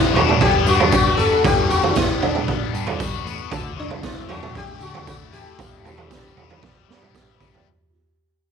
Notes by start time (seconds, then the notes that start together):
Already playing: G3 B3 E4 F#5 B5
0.14 B1 D4 F#4, floor tom, tambourine
0.29 mid tom
0.41 B1 B3 G4, kick, floor tom, tambourine
0.66 G2 D4 F#4, tambourine
0.80 floor tom
0.92 F#4, kick, tambourine
1.17 G1 B3 A4, tambourine
1.44 G1 G3 G4, kick, floor tom, tambourine
1.70 F#1 G3 F#4, tambourine
1.83 floor tom
1.96 B3 E4, kick, snare, tambourine
2.22 B1 D4, floor tom
2.35 mid tom
2.48 B1 B3, kick, floor tom, tambourine
2.73 G2 D4, tambourine
2.87 floor tom
3.00 F#4, kick, tambourine
3.25 A1 B3, tambourine
3.51 D2 D3 F#4 E5 D6, kick, floor tom, tambourine
3.76 C2 F#3 D4
3.90 floor tom
4.03 A3 E4, kick, snare, tambourine
4.29 F#2 D4 F#4, floor tom, tambourine
4.43 mid tom
4.55 F#2 A3 G4, kick, floor tom, tambourine
4.80 D3 D4 F#4, tambourine
4.94 floor tom
5.07 E4 F#4, kick, tambourine
5.33 A1 A3 G4, tambourine
5.58 G1 G2 G4 E5 B5, kick, floor tom, tambourine
5.84 E1 E3, floor tom, tambourine
5.97 floor tom
6.11 G3, kick, snare, tambourine
6.37 B1 B3, floor tom, tambourine
6.50 floor tom
6.63 B1 G3, kick, snare, tambourine
6.88 G2 B3, snare
7.02 mid tom
7.15 E4, kick, snare, tambourine
7.41 G1 G3, kick, tambourine
7.54 floor tom